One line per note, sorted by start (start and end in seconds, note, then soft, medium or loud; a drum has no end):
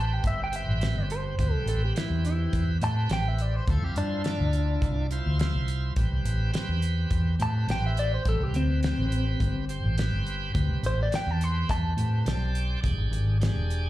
0.00 0.18 A1 medium
0.00 0.48 C4 medium
0.00 0.48 G4 medium
0.00 0.49 B4 medium
0.00 0.14 A5 medium
0.14 0.25 G5 medium
0.24 0.62 G1 medium
0.24 0.40 E5 medium
0.24 kick medium
0.24 closed hi-hat medium
0.44 0.56 G5 medium
0.50 0.79 C4 medium
0.50 0.80 G4 medium
0.50 0.80 B4 medium
0.50 closed hi-hat medium
0.56 1.10 E5 medium
0.67 0.92 A1 medium
0.80 1.35 C4 medium
0.80 1.36 G4 medium
0.80 1.36 B4 medium
0.80 snare medium
0.80 closed hi-hat medium
0.96 1.32 G1 medium
1.10 1.53 C5 medium
1.10 closed hi-hat medium
1.38 1.52 D2 loud
1.38 1.93 C4 medium
1.38 1.93 G4 medium
1.38 1.94 B4 medium
1.38 kick medium
1.38 closed hi-hat medium
1.53 1.65 C2 medium
1.53 1.66 A4 medium
1.66 1.91 A1 medium
1.66 1.83 A4 medium
1.66 closed hi-hat medium
1.85 1.97 G4 medium
1.95 2.77 C4 medium
1.95 2.24 E4 medium
1.95 2.78 G4 medium
1.95 2.78 B4 medium
1.95 snare loud
1.95 closed hi-hat medium
2.10 2.46 E2 medium
2.25 2.68 E4 medium
2.25 closed hi-hat medium
2.53 2.78 E2 medium
2.53 kick medium
2.53 closed hi-hat medium
2.81 3.06 A2 medium
2.81 3.09 C4 medium
2.81 3.09 G4 medium
2.81 3.10 B4 medium
2.81 3.11 A5 medium
2.81 closed hi-hat medium
3.09 3.59 A1 medium
3.09 3.65 C4 medium
3.09 3.65 G4 medium
3.09 3.65 B4 medium
3.09 3.28 G5 medium
3.09 snare loud
3.09 closed hi-hat medium
3.28 3.42 E5 medium
3.38 3.56 D5 medium
3.38 closed hi-hat medium
3.56 3.70 C5 medium
3.67 3.81 D2 loud
3.67 4.22 E4 medium
3.67 4.22 F4 medium
3.67 3.84 A4 medium
3.67 4.23 C5 medium
3.67 kick loud
3.67 closed hi-hat medium
3.82 3.94 F2 medium
3.82 3.96 G4 medium
3.96 4.34 G2 medium
3.96 5.08 D4 medium
3.96 closed hi-hat medium
4.24 5.06 E4 medium
4.24 5.07 F4 medium
4.24 5.07 D5 medium
4.24 snare loud
4.24 closed hi-hat medium
4.40 4.76 D2 medium
4.53 closed hi-hat medium
4.82 5.20 C2 medium
4.82 kick medium
4.82 closed hi-hat medium
5.11 5.37 E4 medium
5.11 5.38 F4 medium
5.11 5.39 C5 medium
5.11 closed hi-hat medium
5.26 5.50 D2 medium
5.39 5.93 E4 medium
5.39 5.94 F4 medium
5.39 5.94 C5 loud
5.39 snare loud
5.39 closed hi-hat medium
5.55 5.91 C2 medium
5.68 closed hi-hat medium
5.96 6.09 A1 loud
5.96 6.51 C4 medium
5.96 6.51 G4 medium
5.96 6.52 B4 medium
5.96 kick loud
5.96 closed hi-hat medium
6.12 6.23 C2 medium
6.25 6.49 A1 medium
6.25 closed hi-hat medium
6.53 7.35 C4 medium
6.53 7.35 G4 medium
6.53 7.36 B4 medium
6.53 snare loud
6.53 closed hi-hat medium
6.69 7.05 E2 medium
6.82 closed hi-hat medium
7.11 7.35 E2 medium
7.11 kick medium
7.11 closed hi-hat medium
7.39 7.64 A2 medium
7.39 7.66 C4 medium
7.39 7.67 G4 medium
7.39 7.67 B4 medium
7.39 7.69 A5 loud
7.39 closed hi-hat medium
7.67 8.17 A1 medium
7.67 8.23 C4 medium
7.67 8.23 G4 medium
7.67 8.24 B4 medium
7.67 7.86 G5 medium
7.67 snare loud
7.67 closed hi-hat medium
7.86 7.98 E5 medium
7.97 8.13 D5 medium
7.97 closed hi-hat medium
8.14 8.26 C5 medium
8.25 8.38 A1 loud
8.25 8.80 C4 medium
8.25 8.81 G4 medium
8.25 8.43 A4 medium
8.25 8.81 B4 medium
8.25 kick loud
8.25 closed hi-hat medium
8.40 8.52 C2 medium
8.40 8.55 G4 medium
8.54 8.91 D2 medium
8.54 9.66 C4 medium
8.54 closed hi-hat medium
8.83 9.65 C4 medium
8.83 9.65 G4 medium
8.83 9.65 B4 medium
8.83 snare loud
8.83 closed hi-hat medium
8.98 9.34 A1 medium
9.12 closed hi-hat medium
9.40 9.78 G1 medium
9.40 kick medium
9.40 closed hi-hat medium
9.69 9.96 C4 medium
9.69 9.96 G4 medium
9.69 9.97 C5 medium
9.69 closed hi-hat medium
9.84 10.08 A1 medium
9.97 10.52 C4 loud
9.97 10.52 G4 medium
9.97 10.52 B4 loud
9.97 snare loud
9.97 closed hi-hat medium
10.12 10.48 G1 medium
10.26 closed hi-hat medium
10.53 10.68 D2 loud
10.53 11.08 C4 medium
10.53 11.09 G4 medium
10.53 11.09 B4 medium
10.53 kick loud
10.53 closed hi-hat medium
10.69 10.81 C2 medium
10.83 11.08 A1 medium
10.83 11.00 C5 medium
10.83 closed hi-hat medium
11.03 11.14 D5 medium
11.11 11.93 C4 medium
11.11 11.93 G4 medium
11.11 11.94 B4 medium
11.11 snare loud
11.11 closed hi-hat medium
11.15 11.31 G5 medium
11.27 11.63 E2 medium
11.31 11.44 A5 medium
11.41 11.70 C6 medium
11.41 closed hi-hat medium
11.69 11.94 E2 medium
11.69 12.81 A5 medium
11.69 kick medium
11.69 closed hi-hat medium
11.97 12.22 A2 medium
11.97 12.23 C4 medium
11.97 12.24 G4 medium
11.97 12.26 B4 medium
11.97 closed hi-hat medium
12.24 12.75 B1 medium
12.24 12.80 C4 medium
12.24 12.81 G4 medium
12.24 12.81 D5 medium
12.24 snare loud
12.24 closed hi-hat medium
12.55 closed hi-hat medium
12.82 12.97 E1 loud
12.82 13.37 D4 medium
12.82 13.38 G4 medium
12.82 13.38 G#4 medium
12.82 kick loud
12.82 closed hi-hat medium
12.98 13.10 G#1 medium
13.11 13.49 G#1 medium
13.11 closed hi-hat medium
13.40 13.90 D4 medium
13.40 13.90 G4 medium
13.40 13.90 G#4 medium
13.40 snare loud
13.40 closed hi-hat medium
13.55 13.90 E1 medium
13.70 closed hi-hat medium